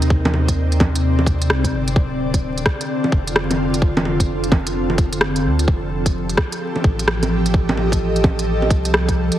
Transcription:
Already playing: sub bass D#2, ambient pad C3 C4 D#4 A#4 D5
0.02 closed hi-hat
0.10 kick
0.25 low bongo
0.34 low bongo
0.48 kick, closed hi-hat
0.72 closed hi-hat
0.80 kick, low bongo
0.95 closed hi-hat
1.19 low bongo
1.26 kick, closed hi-hat
1.42 closed hi-hat
1.50 sub bass C2, cross-stick
1.64 kick, closed hi-hat
1.73 sub bass G1
1.88 closed hi-hat
1.96 sub bass D1, ambient pad D3, kick
2.34 kick, closed hi-hat
2.47 ambient pad F4 A4
2.58 closed hi-hat
2.66 kick, cross-stick
2.81 closed hi-hat
3.04 low bongo
3.12 sub bass F1, kick
3.27 closed hi-hat
3.36 cross-stick
3.51 closed hi-hat, low bongo
3.74 closed hi-hat
3.82 kick
3.97 low bongo
4.05 low bongo
4.20 kick, closed hi-hat
4.44 closed hi-hat
4.52 kick, low bongo
4.67 closed hi-hat
4.90 low bongo
4.98 kick, closed hi-hat
5.13 closed hi-hat
5.21 cross-stick
5.36 closed hi-hat
5.45 sub bass D2
5.59 closed hi-hat
5.68 sub bass F1, ambient pad F3, kick
5.88 ambient pad G4
6.06 kick, closed hi-hat
6.29 closed hi-hat
6.37 kick, cross-stick
6.52 closed hi-hat
6.76 low bongo
6.84 sub bass A1, kick
6.99 closed hi-hat
7.08 cross-stick
7.23 closed hi-hat, low bongo
7.37 ambient pad D#5
7.46 closed hi-hat
7.54 kick
7.69 low bongo
7.77 low bongo
7.92 kick, closed hi-hat
8.16 closed hi-hat
8.24 kick, low bongo
8.39 closed hi-hat
8.62 low bongo
8.70 sub bass C2, kick, closed hi-hat
8.85 closed hi-hat
8.94 cross-stick
9.09 kick, closed hi-hat
9.32 closed hi-hat

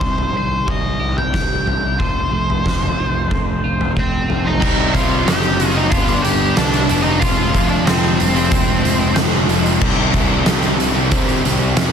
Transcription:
Already playing: clean electric guitar C3 G3, lead electric guitar C5
0.01 picked electric bass C2, clean electric guitar C4, kick
0.18 floor tom
0.33 picked electric bass C2, clean electric guitar D#3, lead electric guitar C5
0.67 picked electric bass C2, clean electric guitar G3, lead electric guitar D#5, kick, floor tom
1.00 picked electric bass C2, clean electric guitar G4
1.18 lead electric guitar G5, floor tom
1.33 picked electric bass C2, clean electric guitar G3, kick, snare
1.66 picked electric bass C2, clean electric guitar G4, floor tom
1.99 picked electric bass F1, clean electric guitar F3, lead electric guitar C5, kick, floor tom
2.31 picked electric bass F1, clean electric guitar A3
2.50 floor tom
2.64 picked electric bass F1, clean electric guitar C4, kick, snare
2.83 floor tom, mid tom
2.98 picked electric bass F1, clean electric guitar F3
3.30 picked electric bass F1, clean electric guitar A3, kick, floor tom
3.64 picked electric bass F1, clean electric guitar F4
3.81 floor tom
3.96 picked electric bass F1, clean electric guitar A3, lead electric guitar C4 C5, kick
4.28 picked electric bass F1, clean electric guitar F4, floor tom
4.47 lead electric guitar D#4 D#5
4.60 picked electric bass C2, distorted electric guitar C3 G3 C4 D#4 G4, kick, crash
4.94 distorted electric guitar G3 C4 D#4 G4, lead electric guitar F4 F5, kick, closed hi-hat
5.26 picked electric bass F#1, distorted electric guitar C3 G3 C4 D#4 G4, lead electric guitar G4 G5, snare, closed hi-hat
5.42 distorted electric guitar C4 D#4 G4, closed hi-hat
5.58 muted distorted electric guitar stroke, closed hi-hat
5.75 distorted electric guitar C4 D#4 G4, lead electric guitar D#4 D#5
5.90 picked electric bass G1, distorted electric guitar G2 D3 G3 B3 D4, lead electric guitar F4 F5, kick, closed hi-hat
5.95 distorted electric guitar G4
6.08 distorted electric guitar G3 B3 D4 G4, closed hi-hat
6.22 picked electric bass G1, lead electric guitar G4 G5, closed hi-hat
6.55 picked electric bass C2, distorted electric guitar G2 D3 G3 B3 D4, lead electric guitar D4 D5, snare, closed hi-hat
6.60 distorted electric guitar G4
6.72 distorted electric guitar G3 B3 D4 G4, closed hi-hat
6.88 picked electric bass F1, distorted electric guitar G3 B3 D4 G4, closed hi-hat
7.02 lead electric guitar D#4 D#5, distorted electric guitar G4
7.06 distorted electric guitar G3 B3 D4
7.20 distorted electric guitar F3 G#3 C4 F4, lead electric guitar F4 F5, kick, closed hi-hat
7.54 picked electric bass F1, distorted electric guitar F3 G#3 C4 F4, kick, closed hi-hat
7.68 lead electric guitar D4 D5
7.85 picked electric bass F1, distorted electric guitar F3 G#3 C4 F4, lead electric guitar C4 C5, snare, closed hi-hat
8.02 distorted electric guitar G#3 C4 F4
8.18 picked electric bass F1, muted distorted electric guitar stroke, closed hi-hat
8.35 distorted electric guitar G#3 C4 F4, closed hi-hat
8.51 picked electric bass F1, distorted electric guitar F3 G#3 C4 F4, kick, closed hi-hat
8.66 distorted electric guitar G#3 C4 F4
8.85 picked electric bass F1, closed hi-hat
9.14 picked electric bass F1, distorted electric guitar F3 G#3 C4 F4, snare, closed hi-hat
9.29 distorted electric guitar G#3 C4 F4
9.46 picked electric bass F1, distorted electric guitar F3 G#3 C4 F4, closed hi-hat
9.62 distorted electric guitar G#3 C4 F4, closed hi-hat
9.81 picked electric bass C2, distorted electric guitar C3 D#3 G3 C4 G4, kick, crash
10.13 distorted electric guitar D#3 G3 C4 G4, kick, closed hi-hat
10.45 picked electric bass C2, distorted electric guitar C3 D#3 G3 C4 G4, snare, closed hi-hat
10.61 distorted electric guitar G3 C4 G4, closed hi-hat
10.78 muted distorted electric guitar stroke, closed hi-hat
10.94 distorted electric guitar G3 C4 G4
11.09 picked electric bass C3, distorted electric guitar D#3 G3 C4 G4, kick, closed hi-hat
11.27 distorted electric guitar G3 C4 G4, closed hi-hat
11.44 picked electric bass C2, closed hi-hat
11.76 picked electric bass F2, distorted electric guitar C3 D#3 G3 C4 G4, snare, closed hi-hat

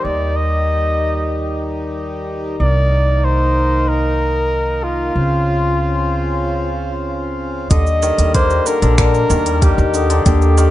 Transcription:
Already playing: harmonium D#3 G3 D#4
0.04 upright bass D#2, flugelhorn D5
0.36 flugelhorn D#5
2.60 upright bass C2, harmonium A#3 D#4, flugelhorn D5
3.24 flugelhorn C5
3.88 flugelhorn A#4
4.84 flugelhorn F4
5.15 upright bass C#2, harmonium C#3 C4 F4
7.70 upright bass D#2, hammered dulcimer D3, harmonium G3, flugelhorn D#5, vibraphone D#5, kick, closed hi-hat, cabasa
7.87 cabasa
8.03 hammered dulcimer D#3, vibraphone D5, cabasa
8.18 upright bass D#2, hammered dulcimer G3, closed hi-hat, cabasa
8.34 hammered dulcimer A#3, flugelhorn C5, vibraphone G5, kick, closed hi-hat, cabasa
8.50 cabasa
8.66 hammered dulcimer D3, flugelhorn A#4, vibraphone A#4, cabasa
8.82 upright bass A#1, hammered dulcimer D3, closed hi-hat, cabasa
8.98 hammered dulcimer D3, flugelhorn A#4, vibraphone D5, finger snap, kick, closed hi-hat, cabasa
9.14 cabasa
9.30 upright bass D#2, hammered dulcimer D#3, vibraphone A#5, cabasa
9.46 hammered dulcimer G3, closed hi-hat, cabasa
9.62 hammered dulcimer A#3, flugelhorn G4, vibraphone D#5, kick, closed hi-hat, cabasa
9.78 upright bass D#2, cabasa
9.94 hammered dulcimer D3, vibraphone D#6, cabasa
10.10 hammered dulcimer D3, closed hi-hat, cabasa
10.26 upright bass D#2, hammered dulcimer D3, flugelhorn G4, vibraphone G5, kick, closed hi-hat, cabasa
10.42 cabasa
10.58 hammered dulcimer D#3, vibraphone G5, cabasa

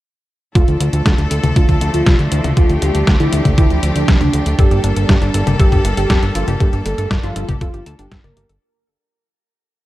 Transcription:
0.55 analog synth bass D2, string section F3 A3 D4 A4, analog synth lead F4, kick, closed hi-hat
0.68 analog synth bass D2, closed hi-hat
0.81 analog synth bass D2, closed hi-hat
0.93 analog synth bass D2, closed hi-hat
1.06 analog synth bass D2, kick, snare, closed hi-hat
1.18 analog synth bass D2, closed hi-hat
1.31 analog synth bass D2, closed hi-hat
1.44 analog synth bass D2, closed hi-hat, high tom
1.56 analog synth bass D2, analog synth lead F4, kick, closed hi-hat
1.69 analog synth bass D2, kick, closed hi-hat
1.81 analog synth bass D2, closed hi-hat
1.94 analog synth bass D2, analog synth lead F4, closed hi-hat
2.06 analog synth bass C2, kick, snare, closed hi-hat
2.19 analog synth bass D2, closed hi-hat
2.32 analog synth bass D2, analog synth lead E4, closed hi-hat
2.44 analog synth bass D2, closed hi-hat, high tom
2.57 analog synth bass D2, analog synth lead F4, string section G4, kick, closed hi-hat
2.70 analog synth bass D2, closed hi-hat
2.82 analog synth bass D2, analog synth lead G4, closed hi-hat
2.95 analog synth bass D2, closed hi-hat
3.07 analog synth bass D2, kick, snare, closed hi-hat
3.20 analog synth bass D2, analog synth lead E4, closed hi-hat
3.33 analog synth bass D2, closed hi-hat
3.45 analog synth bass D2, kick, closed hi-hat, high tom
3.58 analog synth bass D2, analog synth lead E4, kick, closed hi-hat
3.70 analog synth bass D2, closed hi-hat
3.83 analog synth bass D2, closed hi-hat
3.96 analog synth bass D2, analog synth lead D4, closed hi-hat
4.08 analog synth bass C2, kick, snare, closed hi-hat
4.21 analog synth bass D2, analog synth lead D4, closed hi-hat, high tom
4.33 analog synth bass D2, closed hi-hat
4.46 analog synth bass D2, closed hi-hat
4.59 analog synth bass G1, string section G3 A#3 A4, analog synth lead G4, synth arpeggio sound A4, kick, closed hi-hat
4.71 analog synth bass G1, synth arpeggio sound G4, closed hi-hat
4.84 analog synth bass G1, synth arpeggio sound D4, closed hi-hat
4.97 analog synth bass G1, synth arpeggio sound A4, closed hi-hat
5.09 analog synth bass G1, synth arpeggio sound G4, kick, snare, closed hi-hat
5.22 analog synth bass G1, synth arpeggio sound D4, closed hi-hat
5.34 analog synth bass G1, synth arpeggio sound A4, closed hi-hat
5.47 analog synth bass G1, synth arpeggio sound G4, closed hi-hat, high tom
5.60 analog synth bass G1, analog synth lead G4, synth arpeggio sound A4, kick, closed hi-hat
5.72 analog synth bass G1, synth arpeggio sound G4, kick, closed hi-hat
5.85 analog synth bass G1, synth arpeggio sound D4, closed hi-hat
5.97 analog synth bass G1, analog synth lead G4, synth arpeggio sound A4, closed hi-hat
6.10 analog synth bass F1, synth arpeggio sound G4, kick, snare, closed hi-hat
6.23 analog synth bass G1, synth arpeggio sound D4, closed hi-hat
6.35 analog synth bass G1, analog synth lead F4, synth arpeggio sound A4, closed hi-hat
6.48 analog synth bass G1, synth arpeggio sound G4, closed hi-hat, high tom
6.60 analog synth bass G1, analog synth lead G4, synth arpeggio sound A4, kick, closed hi-hat
6.73 analog synth bass G1, synth arpeggio sound G4, closed hi-hat
6.86 analog synth bass G1, synth arpeggio sound D4, analog synth lead A4, closed hi-hat
6.98 analog synth bass G1, synth arpeggio sound A4, closed hi-hat
7.11 analog synth bass G1, synth arpeggio sound G4, kick, snare, closed hi-hat
7.23 analog synth bass G1, synth arpeggio sound D4, analog synth lead F4, closed hi-hat
7.36 analog synth bass G1, synth arpeggio sound A4, closed hi-hat
7.49 analog synth bass G1, synth arpeggio sound G4, kick, closed hi-hat, high tom
7.61 analog synth bass F1, analog synth lead F4, synth arpeggio sound A4, kick, closed hi-hat
7.74 analog synth bass G1, synth arpeggio sound G4, closed hi-hat
7.86 analog synth bass D2, synth arpeggio sound A5, closed hi-hat
7.99 analog synth bass G1, synth arpeggio sound D4, analog synth lead G4, closed hi-hat
8.12 analog synth bass G1, synth arpeggio sound A4, kick, snare, closed hi-hat
8.24 analog synth bass G1, analog synth lead A#4, synth arpeggio sound D5, closed hi-hat, high tom
8.37 analog synth bass G1, synth arpeggio sound G4, closed hi-hat
8.49 analog synth bass G1, synth arpeggio sound A4, closed hi-hat

